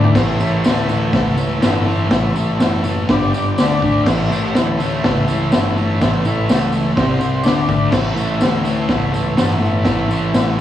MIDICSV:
0, 0, Header, 1, 5, 480
1, 0, Start_track
1, 0, Tempo, 488202
1, 154, Time_signature, 4, 2, 24, 8
1, 4474, Tempo, 483092
1, 10491, End_track
2, 0, Start_track
2, 0, Title_t, "Transistor combo organ"
2, 0, Program_c, 0, 18
2, 0, Note_on_c, 0, 62, 74
2, 0, Note_on_c, 0, 69, 67
2, 0, Note_on_c, 0, 74, 81
2, 118, Note_on_c, 0, 64, 78
2, 120, Note_off_c, 0, 69, 0
2, 131, Note_on_c, 0, 69, 67
2, 136, Note_on_c, 0, 73, 81
2, 139, Note_off_c, 0, 74, 0
2, 141, Note_off_c, 0, 62, 0
2, 2979, Note_off_c, 0, 64, 0
2, 2986, Note_off_c, 0, 69, 0
2, 2988, Note_off_c, 0, 73, 0
2, 3058, Note_on_c, 0, 62, 69
2, 3058, Note_on_c, 0, 67, 67
2, 3068, Note_on_c, 0, 74, 87
2, 3525, Note_off_c, 0, 62, 0
2, 3526, Note_off_c, 0, 67, 0
2, 3529, Note_off_c, 0, 74, 0
2, 3537, Note_on_c, 0, 62, 77
2, 3541, Note_on_c, 0, 69, 65
2, 3541, Note_on_c, 0, 74, 86
2, 3951, Note_off_c, 0, 69, 0
2, 3962, Note_on_c, 0, 69, 69
2, 3968, Note_on_c, 0, 64, 80
2, 3970, Note_on_c, 0, 73, 88
2, 4005, Note_off_c, 0, 62, 0
2, 4007, Note_off_c, 0, 74, 0
2, 6825, Note_off_c, 0, 69, 0
2, 6827, Note_off_c, 0, 64, 0
2, 6828, Note_off_c, 0, 73, 0
2, 6863, Note_on_c, 0, 72, 81
2, 6871, Note_on_c, 0, 60, 71
2, 6875, Note_on_c, 0, 67, 68
2, 7335, Note_on_c, 0, 62, 73
2, 7352, Note_off_c, 0, 72, 0
2, 7352, Note_on_c, 0, 74, 88
2, 7354, Note_on_c, 0, 69, 67
2, 7356, Note_off_c, 0, 60, 0
2, 7358, Note_off_c, 0, 67, 0
2, 7824, Note_off_c, 0, 69, 0
2, 7828, Note_off_c, 0, 62, 0
2, 7833, Note_on_c, 0, 64, 78
2, 7833, Note_on_c, 0, 73, 84
2, 7836, Note_off_c, 0, 74, 0
2, 7836, Note_on_c, 0, 69, 70
2, 10491, Note_off_c, 0, 64, 0
2, 10491, Note_off_c, 0, 69, 0
2, 10491, Note_off_c, 0, 73, 0
2, 10491, End_track
3, 0, Start_track
3, 0, Title_t, "Distorted electric guitar"
3, 0, Program_c, 1, 30
3, 0, Note_on_c, 1, 50, 83
3, 0, Note_on_c, 1, 57, 83
3, 0, Note_on_c, 1, 62, 94
3, 138, Note_off_c, 1, 50, 0
3, 142, Note_off_c, 1, 62, 0
3, 155, Note_on_c, 1, 45, 86
3, 163, Note_off_c, 1, 57, 0
3, 167, Note_on_c, 1, 52, 101
3, 167, Note_on_c, 1, 57, 121
3, 380, Note_off_c, 1, 45, 0
3, 386, Note_off_c, 1, 52, 0
3, 392, Note_on_c, 1, 45, 89
3, 397, Note_off_c, 1, 57, 0
3, 398, Note_on_c, 1, 52, 85
3, 409, Note_on_c, 1, 57, 99
3, 628, Note_off_c, 1, 45, 0
3, 633, Note_off_c, 1, 52, 0
3, 640, Note_on_c, 1, 45, 84
3, 644, Note_off_c, 1, 57, 0
3, 645, Note_on_c, 1, 52, 89
3, 656, Note_on_c, 1, 57, 103
3, 862, Note_off_c, 1, 45, 0
3, 863, Note_off_c, 1, 52, 0
3, 874, Note_on_c, 1, 45, 80
3, 874, Note_on_c, 1, 52, 74
3, 877, Note_off_c, 1, 57, 0
3, 889, Note_on_c, 1, 57, 91
3, 1085, Note_off_c, 1, 45, 0
3, 1089, Note_off_c, 1, 52, 0
3, 1097, Note_on_c, 1, 45, 82
3, 1099, Note_off_c, 1, 57, 0
3, 1101, Note_on_c, 1, 52, 89
3, 1111, Note_on_c, 1, 57, 104
3, 1318, Note_off_c, 1, 45, 0
3, 1321, Note_off_c, 1, 52, 0
3, 1329, Note_on_c, 1, 45, 89
3, 1333, Note_on_c, 1, 52, 98
3, 1340, Note_off_c, 1, 57, 0
3, 1352, Note_on_c, 1, 57, 107
3, 1549, Note_off_c, 1, 45, 0
3, 1557, Note_off_c, 1, 52, 0
3, 1561, Note_on_c, 1, 45, 93
3, 1569, Note_off_c, 1, 57, 0
3, 1569, Note_on_c, 1, 52, 95
3, 1581, Note_on_c, 1, 57, 90
3, 1803, Note_off_c, 1, 45, 0
3, 1815, Note_on_c, 1, 45, 74
3, 1818, Note_off_c, 1, 52, 0
3, 1823, Note_off_c, 1, 57, 0
3, 1829, Note_on_c, 1, 52, 91
3, 1835, Note_on_c, 1, 57, 88
3, 2035, Note_off_c, 1, 45, 0
3, 2047, Note_on_c, 1, 45, 98
3, 2048, Note_off_c, 1, 52, 0
3, 2048, Note_off_c, 1, 57, 0
3, 2060, Note_on_c, 1, 52, 96
3, 2060, Note_on_c, 1, 57, 108
3, 2299, Note_off_c, 1, 45, 0
3, 2311, Note_off_c, 1, 52, 0
3, 2311, Note_on_c, 1, 45, 91
3, 2321, Note_off_c, 1, 57, 0
3, 2323, Note_on_c, 1, 52, 91
3, 2333, Note_on_c, 1, 57, 98
3, 2522, Note_off_c, 1, 45, 0
3, 2533, Note_on_c, 1, 45, 99
3, 2537, Note_off_c, 1, 52, 0
3, 2539, Note_off_c, 1, 57, 0
3, 2549, Note_on_c, 1, 52, 98
3, 2551, Note_on_c, 1, 57, 96
3, 2772, Note_off_c, 1, 45, 0
3, 2784, Note_on_c, 1, 45, 78
3, 2785, Note_off_c, 1, 52, 0
3, 2797, Note_on_c, 1, 52, 80
3, 2799, Note_off_c, 1, 57, 0
3, 2811, Note_on_c, 1, 57, 98
3, 3016, Note_off_c, 1, 45, 0
3, 3022, Note_off_c, 1, 52, 0
3, 3029, Note_off_c, 1, 57, 0
3, 3030, Note_on_c, 1, 43, 92
3, 3036, Note_on_c, 1, 50, 100
3, 3043, Note_on_c, 1, 55, 115
3, 3271, Note_off_c, 1, 43, 0
3, 3280, Note_off_c, 1, 50, 0
3, 3283, Note_on_c, 1, 43, 89
3, 3287, Note_off_c, 1, 55, 0
3, 3292, Note_on_c, 1, 50, 108
3, 3298, Note_on_c, 1, 55, 99
3, 3505, Note_off_c, 1, 43, 0
3, 3509, Note_off_c, 1, 50, 0
3, 3512, Note_off_c, 1, 55, 0
3, 3538, Note_on_c, 1, 50, 93
3, 3541, Note_on_c, 1, 57, 97
3, 3560, Note_on_c, 1, 62, 102
3, 3744, Note_off_c, 1, 50, 0
3, 3756, Note_on_c, 1, 50, 87
3, 3757, Note_off_c, 1, 57, 0
3, 3761, Note_on_c, 1, 57, 89
3, 3764, Note_off_c, 1, 62, 0
3, 3775, Note_on_c, 1, 62, 93
3, 3979, Note_off_c, 1, 50, 0
3, 3983, Note_on_c, 1, 45, 104
3, 3990, Note_off_c, 1, 62, 0
3, 3994, Note_off_c, 1, 57, 0
3, 3998, Note_on_c, 1, 52, 107
3, 4012, Note_on_c, 1, 57, 116
3, 4217, Note_off_c, 1, 45, 0
3, 4226, Note_off_c, 1, 52, 0
3, 4229, Note_on_c, 1, 45, 90
3, 4234, Note_off_c, 1, 57, 0
3, 4238, Note_on_c, 1, 52, 92
3, 4246, Note_on_c, 1, 57, 96
3, 4460, Note_off_c, 1, 45, 0
3, 4472, Note_on_c, 1, 45, 85
3, 4478, Note_off_c, 1, 52, 0
3, 4486, Note_off_c, 1, 57, 0
3, 4490, Note_on_c, 1, 52, 104
3, 4497, Note_on_c, 1, 57, 101
3, 4720, Note_off_c, 1, 45, 0
3, 4726, Note_off_c, 1, 52, 0
3, 4732, Note_on_c, 1, 45, 83
3, 4734, Note_off_c, 1, 57, 0
3, 4738, Note_on_c, 1, 52, 75
3, 4746, Note_on_c, 1, 57, 95
3, 4970, Note_off_c, 1, 45, 0
3, 4970, Note_off_c, 1, 52, 0
3, 4981, Note_on_c, 1, 45, 88
3, 4982, Note_on_c, 1, 52, 96
3, 4984, Note_off_c, 1, 57, 0
3, 4996, Note_on_c, 1, 57, 100
3, 5194, Note_off_c, 1, 45, 0
3, 5206, Note_off_c, 1, 52, 0
3, 5206, Note_on_c, 1, 45, 91
3, 5218, Note_on_c, 1, 52, 103
3, 5219, Note_off_c, 1, 57, 0
3, 5231, Note_on_c, 1, 57, 101
3, 5426, Note_off_c, 1, 45, 0
3, 5437, Note_on_c, 1, 45, 91
3, 5438, Note_off_c, 1, 52, 0
3, 5443, Note_off_c, 1, 57, 0
3, 5450, Note_on_c, 1, 52, 92
3, 5455, Note_on_c, 1, 57, 96
3, 5684, Note_off_c, 1, 52, 0
3, 5685, Note_off_c, 1, 45, 0
3, 5696, Note_on_c, 1, 52, 89
3, 5697, Note_on_c, 1, 45, 85
3, 5699, Note_off_c, 1, 57, 0
3, 5710, Note_on_c, 1, 57, 99
3, 5902, Note_off_c, 1, 45, 0
3, 5913, Note_off_c, 1, 52, 0
3, 5914, Note_on_c, 1, 45, 99
3, 5920, Note_off_c, 1, 57, 0
3, 5925, Note_on_c, 1, 52, 100
3, 5931, Note_on_c, 1, 57, 114
3, 6148, Note_off_c, 1, 45, 0
3, 6157, Note_off_c, 1, 52, 0
3, 6160, Note_on_c, 1, 45, 88
3, 6168, Note_off_c, 1, 57, 0
3, 6169, Note_on_c, 1, 52, 92
3, 6179, Note_on_c, 1, 57, 100
3, 6398, Note_off_c, 1, 45, 0
3, 6406, Note_off_c, 1, 52, 0
3, 6407, Note_off_c, 1, 57, 0
3, 6410, Note_on_c, 1, 45, 94
3, 6418, Note_on_c, 1, 52, 95
3, 6419, Note_on_c, 1, 57, 92
3, 6651, Note_off_c, 1, 45, 0
3, 6653, Note_off_c, 1, 52, 0
3, 6663, Note_off_c, 1, 57, 0
3, 6663, Note_on_c, 1, 45, 89
3, 6664, Note_on_c, 1, 52, 79
3, 6675, Note_on_c, 1, 57, 84
3, 6858, Note_off_c, 1, 45, 0
3, 6862, Note_on_c, 1, 48, 97
3, 6872, Note_off_c, 1, 52, 0
3, 6876, Note_on_c, 1, 55, 99
3, 6880, Note_off_c, 1, 57, 0
3, 6884, Note_on_c, 1, 60, 101
3, 7094, Note_off_c, 1, 48, 0
3, 7106, Note_on_c, 1, 48, 100
3, 7113, Note_off_c, 1, 55, 0
3, 7121, Note_off_c, 1, 60, 0
3, 7125, Note_on_c, 1, 55, 100
3, 7133, Note_on_c, 1, 60, 110
3, 7339, Note_off_c, 1, 48, 0
3, 7343, Note_on_c, 1, 50, 95
3, 7348, Note_off_c, 1, 55, 0
3, 7352, Note_off_c, 1, 60, 0
3, 7355, Note_on_c, 1, 57, 112
3, 7364, Note_on_c, 1, 62, 112
3, 7573, Note_off_c, 1, 50, 0
3, 7585, Note_off_c, 1, 62, 0
3, 7585, Note_on_c, 1, 50, 82
3, 7587, Note_off_c, 1, 57, 0
3, 7590, Note_on_c, 1, 57, 77
3, 7597, Note_on_c, 1, 62, 86
3, 7815, Note_off_c, 1, 50, 0
3, 7819, Note_on_c, 1, 45, 100
3, 7824, Note_off_c, 1, 57, 0
3, 7824, Note_off_c, 1, 62, 0
3, 7828, Note_on_c, 1, 52, 102
3, 7833, Note_on_c, 1, 57, 102
3, 8033, Note_off_c, 1, 45, 0
3, 8035, Note_off_c, 1, 52, 0
3, 8045, Note_on_c, 1, 45, 100
3, 8047, Note_on_c, 1, 52, 92
3, 8051, Note_off_c, 1, 57, 0
3, 8063, Note_on_c, 1, 57, 102
3, 8284, Note_off_c, 1, 45, 0
3, 8285, Note_off_c, 1, 52, 0
3, 8296, Note_on_c, 1, 45, 89
3, 8297, Note_on_c, 1, 52, 105
3, 8302, Note_off_c, 1, 57, 0
3, 8314, Note_on_c, 1, 57, 107
3, 8526, Note_off_c, 1, 45, 0
3, 8538, Note_on_c, 1, 45, 87
3, 8540, Note_off_c, 1, 52, 0
3, 8543, Note_off_c, 1, 57, 0
3, 8552, Note_on_c, 1, 52, 80
3, 8555, Note_on_c, 1, 57, 84
3, 8781, Note_off_c, 1, 45, 0
3, 8785, Note_off_c, 1, 52, 0
3, 8793, Note_on_c, 1, 45, 83
3, 8795, Note_off_c, 1, 57, 0
3, 8797, Note_on_c, 1, 52, 98
3, 8806, Note_on_c, 1, 57, 90
3, 8997, Note_off_c, 1, 45, 0
3, 8998, Note_off_c, 1, 52, 0
3, 9009, Note_on_c, 1, 45, 90
3, 9010, Note_off_c, 1, 57, 0
3, 9010, Note_on_c, 1, 52, 97
3, 9022, Note_on_c, 1, 57, 103
3, 9245, Note_off_c, 1, 45, 0
3, 9250, Note_off_c, 1, 52, 0
3, 9257, Note_on_c, 1, 45, 97
3, 9262, Note_off_c, 1, 57, 0
3, 9262, Note_on_c, 1, 52, 95
3, 9274, Note_on_c, 1, 57, 99
3, 9477, Note_off_c, 1, 45, 0
3, 9488, Note_off_c, 1, 52, 0
3, 9489, Note_on_c, 1, 45, 78
3, 9500, Note_on_c, 1, 52, 89
3, 9501, Note_off_c, 1, 57, 0
3, 9513, Note_on_c, 1, 57, 92
3, 9724, Note_off_c, 1, 45, 0
3, 9736, Note_on_c, 1, 45, 110
3, 9738, Note_off_c, 1, 52, 0
3, 9746, Note_off_c, 1, 57, 0
3, 9750, Note_on_c, 1, 52, 103
3, 9758, Note_on_c, 1, 57, 109
3, 9957, Note_off_c, 1, 45, 0
3, 9957, Note_off_c, 1, 52, 0
3, 9968, Note_on_c, 1, 52, 103
3, 9969, Note_on_c, 1, 45, 89
3, 9977, Note_off_c, 1, 57, 0
3, 9989, Note_on_c, 1, 57, 99
3, 10198, Note_off_c, 1, 45, 0
3, 10210, Note_off_c, 1, 52, 0
3, 10210, Note_on_c, 1, 45, 88
3, 10215, Note_off_c, 1, 57, 0
3, 10222, Note_on_c, 1, 52, 99
3, 10227, Note_on_c, 1, 57, 102
3, 10452, Note_off_c, 1, 45, 0
3, 10467, Note_off_c, 1, 52, 0
3, 10472, Note_off_c, 1, 57, 0
3, 10491, End_track
4, 0, Start_track
4, 0, Title_t, "Fingered electric bass"
4, 0, Program_c, 2, 33
4, 0, Note_on_c, 2, 38, 86
4, 122, Note_off_c, 2, 38, 0
4, 150, Note_on_c, 2, 33, 98
4, 602, Note_off_c, 2, 33, 0
4, 639, Note_on_c, 2, 38, 87
4, 1088, Note_off_c, 2, 38, 0
4, 1115, Note_on_c, 2, 37, 89
4, 1566, Note_off_c, 2, 37, 0
4, 1605, Note_on_c, 2, 31, 91
4, 2051, Note_off_c, 2, 31, 0
4, 2074, Note_on_c, 2, 33, 102
4, 2525, Note_off_c, 2, 33, 0
4, 2583, Note_on_c, 2, 30, 96
4, 3020, Note_off_c, 2, 30, 0
4, 3039, Note_on_c, 2, 31, 99
4, 3486, Note_off_c, 2, 31, 0
4, 3541, Note_on_c, 2, 38, 87
4, 3977, Note_off_c, 2, 38, 0
4, 4001, Note_on_c, 2, 33, 104
4, 4445, Note_off_c, 2, 33, 0
4, 4488, Note_on_c, 2, 38, 93
4, 4932, Note_off_c, 2, 38, 0
4, 4965, Note_on_c, 2, 37, 90
4, 5412, Note_off_c, 2, 37, 0
4, 5446, Note_on_c, 2, 31, 87
4, 5893, Note_off_c, 2, 31, 0
4, 5928, Note_on_c, 2, 33, 103
4, 6374, Note_off_c, 2, 33, 0
4, 6418, Note_on_c, 2, 37, 96
4, 6859, Note_off_c, 2, 37, 0
4, 6888, Note_on_c, 2, 36, 94
4, 7334, Note_off_c, 2, 36, 0
4, 7373, Note_on_c, 2, 38, 86
4, 7817, Note_off_c, 2, 38, 0
4, 7830, Note_on_c, 2, 33, 102
4, 8284, Note_off_c, 2, 33, 0
4, 8318, Note_on_c, 2, 38, 94
4, 8768, Note_off_c, 2, 38, 0
4, 8786, Note_on_c, 2, 37, 84
4, 9240, Note_off_c, 2, 37, 0
4, 9281, Note_on_c, 2, 31, 91
4, 9728, Note_off_c, 2, 31, 0
4, 9750, Note_on_c, 2, 33, 98
4, 10201, Note_off_c, 2, 33, 0
4, 10234, Note_on_c, 2, 33, 93
4, 10491, Note_off_c, 2, 33, 0
4, 10491, End_track
5, 0, Start_track
5, 0, Title_t, "Drums"
5, 36, Note_on_c, 9, 43, 93
5, 134, Note_off_c, 9, 43, 0
5, 149, Note_on_c, 9, 36, 116
5, 149, Note_on_c, 9, 46, 67
5, 149, Note_on_c, 9, 49, 97
5, 149, Note_on_c, 9, 54, 74
5, 152, Note_on_c, 9, 38, 122
5, 247, Note_off_c, 9, 36, 0
5, 247, Note_off_c, 9, 46, 0
5, 247, Note_off_c, 9, 49, 0
5, 247, Note_off_c, 9, 54, 0
5, 250, Note_off_c, 9, 38, 0
5, 394, Note_on_c, 9, 54, 75
5, 492, Note_off_c, 9, 54, 0
5, 631, Note_on_c, 9, 54, 97
5, 639, Note_on_c, 9, 46, 65
5, 642, Note_on_c, 9, 38, 111
5, 729, Note_off_c, 9, 54, 0
5, 737, Note_off_c, 9, 46, 0
5, 740, Note_off_c, 9, 38, 0
5, 875, Note_on_c, 9, 54, 74
5, 973, Note_off_c, 9, 54, 0
5, 1113, Note_on_c, 9, 36, 116
5, 1114, Note_on_c, 9, 46, 63
5, 1117, Note_on_c, 9, 38, 105
5, 1117, Note_on_c, 9, 54, 27
5, 1211, Note_off_c, 9, 36, 0
5, 1212, Note_off_c, 9, 46, 0
5, 1215, Note_off_c, 9, 38, 0
5, 1216, Note_off_c, 9, 54, 0
5, 1351, Note_on_c, 9, 54, 74
5, 1449, Note_off_c, 9, 54, 0
5, 1592, Note_on_c, 9, 46, 64
5, 1595, Note_on_c, 9, 38, 119
5, 1596, Note_on_c, 9, 54, 95
5, 1691, Note_off_c, 9, 46, 0
5, 1694, Note_off_c, 9, 38, 0
5, 1695, Note_off_c, 9, 54, 0
5, 1856, Note_on_c, 9, 54, 28
5, 1954, Note_off_c, 9, 54, 0
5, 2067, Note_on_c, 9, 46, 60
5, 2070, Note_on_c, 9, 38, 121
5, 2071, Note_on_c, 9, 54, 66
5, 2074, Note_on_c, 9, 36, 127
5, 2166, Note_off_c, 9, 46, 0
5, 2169, Note_off_c, 9, 38, 0
5, 2170, Note_off_c, 9, 54, 0
5, 2172, Note_off_c, 9, 36, 0
5, 2317, Note_on_c, 9, 54, 74
5, 2415, Note_off_c, 9, 54, 0
5, 2556, Note_on_c, 9, 46, 62
5, 2558, Note_on_c, 9, 54, 99
5, 2559, Note_on_c, 9, 38, 116
5, 2655, Note_off_c, 9, 46, 0
5, 2657, Note_off_c, 9, 38, 0
5, 2657, Note_off_c, 9, 54, 0
5, 2791, Note_on_c, 9, 54, 81
5, 2889, Note_off_c, 9, 54, 0
5, 3034, Note_on_c, 9, 46, 61
5, 3037, Note_on_c, 9, 38, 118
5, 3039, Note_on_c, 9, 36, 119
5, 3040, Note_on_c, 9, 54, 28
5, 3132, Note_off_c, 9, 46, 0
5, 3135, Note_off_c, 9, 38, 0
5, 3137, Note_off_c, 9, 36, 0
5, 3138, Note_off_c, 9, 54, 0
5, 3286, Note_on_c, 9, 54, 76
5, 3384, Note_off_c, 9, 54, 0
5, 3520, Note_on_c, 9, 46, 70
5, 3520, Note_on_c, 9, 54, 102
5, 3523, Note_on_c, 9, 38, 114
5, 3618, Note_off_c, 9, 46, 0
5, 3618, Note_off_c, 9, 54, 0
5, 3621, Note_off_c, 9, 38, 0
5, 3760, Note_on_c, 9, 36, 83
5, 3781, Note_on_c, 9, 54, 30
5, 3858, Note_off_c, 9, 36, 0
5, 3879, Note_off_c, 9, 54, 0
5, 3994, Note_on_c, 9, 49, 105
5, 3997, Note_on_c, 9, 38, 119
5, 3998, Note_on_c, 9, 36, 109
5, 4001, Note_on_c, 9, 54, 72
5, 4092, Note_off_c, 9, 49, 0
5, 4095, Note_off_c, 9, 38, 0
5, 4096, Note_off_c, 9, 36, 0
5, 4100, Note_off_c, 9, 54, 0
5, 4248, Note_on_c, 9, 54, 83
5, 4347, Note_off_c, 9, 54, 0
5, 4471, Note_on_c, 9, 46, 68
5, 4474, Note_on_c, 9, 38, 110
5, 4487, Note_on_c, 9, 54, 110
5, 4570, Note_off_c, 9, 46, 0
5, 4573, Note_off_c, 9, 38, 0
5, 4587, Note_off_c, 9, 54, 0
5, 4723, Note_on_c, 9, 54, 74
5, 4822, Note_off_c, 9, 54, 0
5, 4957, Note_on_c, 9, 46, 68
5, 4960, Note_on_c, 9, 38, 119
5, 4964, Note_on_c, 9, 36, 115
5, 4970, Note_on_c, 9, 54, 26
5, 5056, Note_off_c, 9, 46, 0
5, 5059, Note_off_c, 9, 38, 0
5, 5063, Note_off_c, 9, 36, 0
5, 5070, Note_off_c, 9, 54, 0
5, 5200, Note_on_c, 9, 54, 77
5, 5300, Note_off_c, 9, 54, 0
5, 5436, Note_on_c, 9, 54, 93
5, 5438, Note_on_c, 9, 46, 66
5, 5441, Note_on_c, 9, 38, 112
5, 5535, Note_off_c, 9, 54, 0
5, 5537, Note_off_c, 9, 46, 0
5, 5540, Note_off_c, 9, 38, 0
5, 5690, Note_on_c, 9, 54, 30
5, 5789, Note_off_c, 9, 54, 0
5, 5925, Note_on_c, 9, 54, 76
5, 5929, Note_on_c, 9, 36, 118
5, 5929, Note_on_c, 9, 46, 61
5, 5932, Note_on_c, 9, 38, 119
5, 6024, Note_off_c, 9, 54, 0
5, 6028, Note_off_c, 9, 36, 0
5, 6029, Note_off_c, 9, 46, 0
5, 6032, Note_off_c, 9, 38, 0
5, 6161, Note_on_c, 9, 54, 77
5, 6261, Note_off_c, 9, 54, 0
5, 6404, Note_on_c, 9, 54, 111
5, 6405, Note_on_c, 9, 46, 62
5, 6408, Note_on_c, 9, 38, 116
5, 6503, Note_off_c, 9, 54, 0
5, 6504, Note_off_c, 9, 46, 0
5, 6507, Note_off_c, 9, 38, 0
5, 6635, Note_on_c, 9, 54, 83
5, 6734, Note_off_c, 9, 54, 0
5, 6872, Note_on_c, 9, 54, 27
5, 6877, Note_on_c, 9, 46, 63
5, 6880, Note_on_c, 9, 36, 116
5, 6880, Note_on_c, 9, 38, 116
5, 6972, Note_off_c, 9, 54, 0
5, 6976, Note_off_c, 9, 46, 0
5, 6979, Note_off_c, 9, 38, 0
5, 6980, Note_off_c, 9, 36, 0
5, 7114, Note_on_c, 9, 54, 83
5, 7213, Note_off_c, 9, 54, 0
5, 7342, Note_on_c, 9, 54, 97
5, 7364, Note_on_c, 9, 46, 64
5, 7367, Note_on_c, 9, 38, 117
5, 7441, Note_off_c, 9, 54, 0
5, 7463, Note_off_c, 9, 46, 0
5, 7466, Note_off_c, 9, 38, 0
5, 7592, Note_on_c, 9, 36, 79
5, 7593, Note_on_c, 9, 54, 28
5, 7692, Note_off_c, 9, 36, 0
5, 7692, Note_off_c, 9, 54, 0
5, 7821, Note_on_c, 9, 57, 101
5, 7824, Note_on_c, 9, 38, 117
5, 7830, Note_on_c, 9, 36, 124
5, 7836, Note_on_c, 9, 54, 75
5, 7920, Note_off_c, 9, 57, 0
5, 7923, Note_off_c, 9, 38, 0
5, 7929, Note_off_c, 9, 36, 0
5, 7936, Note_off_c, 9, 54, 0
5, 8075, Note_on_c, 9, 54, 77
5, 8174, Note_off_c, 9, 54, 0
5, 8305, Note_on_c, 9, 54, 110
5, 8311, Note_on_c, 9, 46, 70
5, 8314, Note_on_c, 9, 38, 114
5, 8404, Note_off_c, 9, 54, 0
5, 8411, Note_off_c, 9, 46, 0
5, 8414, Note_off_c, 9, 38, 0
5, 8549, Note_on_c, 9, 54, 79
5, 8648, Note_off_c, 9, 54, 0
5, 8781, Note_on_c, 9, 46, 63
5, 8784, Note_on_c, 9, 38, 114
5, 8785, Note_on_c, 9, 36, 118
5, 8793, Note_on_c, 9, 54, 30
5, 8880, Note_off_c, 9, 46, 0
5, 8883, Note_off_c, 9, 38, 0
5, 8884, Note_off_c, 9, 36, 0
5, 8892, Note_off_c, 9, 54, 0
5, 9035, Note_on_c, 9, 54, 77
5, 9135, Note_off_c, 9, 54, 0
5, 9263, Note_on_c, 9, 46, 62
5, 9266, Note_on_c, 9, 38, 114
5, 9274, Note_on_c, 9, 54, 93
5, 9363, Note_off_c, 9, 46, 0
5, 9366, Note_off_c, 9, 38, 0
5, 9374, Note_off_c, 9, 54, 0
5, 9534, Note_on_c, 9, 54, 29
5, 9634, Note_off_c, 9, 54, 0
5, 9734, Note_on_c, 9, 46, 59
5, 9737, Note_on_c, 9, 38, 123
5, 9744, Note_on_c, 9, 36, 115
5, 9750, Note_on_c, 9, 54, 70
5, 9833, Note_off_c, 9, 46, 0
5, 9836, Note_off_c, 9, 38, 0
5, 9843, Note_off_c, 9, 36, 0
5, 9850, Note_off_c, 9, 54, 0
5, 9993, Note_on_c, 9, 54, 72
5, 10093, Note_off_c, 9, 54, 0
5, 10226, Note_on_c, 9, 46, 61
5, 10229, Note_on_c, 9, 38, 124
5, 10230, Note_on_c, 9, 54, 106
5, 10325, Note_off_c, 9, 46, 0
5, 10328, Note_off_c, 9, 38, 0
5, 10330, Note_off_c, 9, 54, 0
5, 10491, End_track
0, 0, End_of_file